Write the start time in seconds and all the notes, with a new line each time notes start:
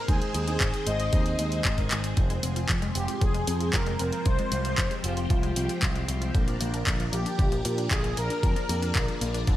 Already playing: D#3 G#3 C4 G#4 C5
0.08 D#2 G#3 C4 D#4 G#4 C5, kick, closed hi-hat
0.22 closed hi-hat
0.34 D#2, closed hi-hat
0.47 G#3 C4 D#4 C5, closed hi-hat
0.61 G#1, kick, clap, closed hi-hat
0.74 closed hi-hat
0.87 G#1 G#3 C4 D#4 C5 D#5, closed hi-hat
1.00 closed hi-hat
1.13 D#2 G#3 C4 D#4 C5, kick, closed hi-hat
1.26 closed hi-hat
1.39 D#2 G#3 C4 D#4 D#5, closed hi-hat
1.52 closed hi-hat
1.65 G#1, kick, clap, closed hi-hat
1.78 G#3 C4 D#4 A#4, kick, closed hi-hat
1.91 G#1, clap, closed hi-hat
2.04 closed hi-hat
2.17 F1 F3 C4 C5, kick, closed hi-hat
2.30 G#3, closed hi-hat
2.43 F1 C4, closed hi-hat
2.56 F4, closed hi-hat
2.69 F1 F3, kick, clap, closed hi-hat
2.82 G#3, closed hi-hat
2.95 F1 C4 G4, closed hi-hat
3.08 F4, closed hi-hat
3.21 F1 F3 G#4, kick, closed hi-hat
3.34 G#3, closed hi-hat
3.47 F2 C4, closed hi-hat
3.60 F4, closed hi-hat
3.73 F1 F3 A#4, kick, clap, closed hi-hat
3.86 G#3, closed hi-hat
3.99 F1 C4, closed hi-hat
4.12 F4, closed hi-hat
4.25 C2 F3 G4 C5, kick, closed hi-hat
4.39 G#3, closed hi-hat
4.52 C2 C4, closed hi-hat
4.65 F4, closed hi-hat
4.78 F3, kick, clap, closed hi-hat
4.91 G#3, closed hi-hat
5.04 F1 C4 F4, closed hi-hat
5.17 F4, closed hi-hat
5.30 C2 F3, kick, closed hi-hat
5.43 G#3, closed hi-hat
5.56 C2 C4, closed hi-hat
5.69 F4, closed hi-hat
5.82 C2 F3, kick, clap, closed hi-hat
5.95 G#3, closed hi-hat
6.08 C2 C4, closed hi-hat
6.21 F4, closed hi-hat
6.34 A#1 D3 A#3 D4 A#4 D5, kick, closed hi-hat
6.47 F3, closed hi-hat
6.61 A#1 A#3, closed hi-hat
6.74 D4, closed hi-hat
6.87 A#1 D3, kick, clap, closed hi-hat
7.00 F3, closed hi-hat
7.13 A#1 A#3 G4, closed hi-hat
7.26 D4, closed hi-hat
7.39 A#1 D3, kick, closed hi-hat
7.52 F3, closed hi-hat
7.65 A#2 A#3, closed hi-hat
7.78 D4, closed hi-hat
7.91 A#1 D3 G#4, kick, clap, closed hi-hat
8.04 F3, closed hi-hat
8.17 A#1 A#3 A#4, closed hi-hat
8.30 D4, closed hi-hat
8.43 F2 D3 G#4, kick, closed hi-hat
8.56 F3, closed hi-hat
8.69 F2 A#3, closed hi-hat
8.82 D4, closed hi-hat
8.95 A#1 D3, kick, clap, closed hi-hat
9.08 F3, closed hi-hat
9.21 A#1 A#3, closed hi-hat
9.34 D4, closed hi-hat
9.47 F1 D3, kick, closed hi-hat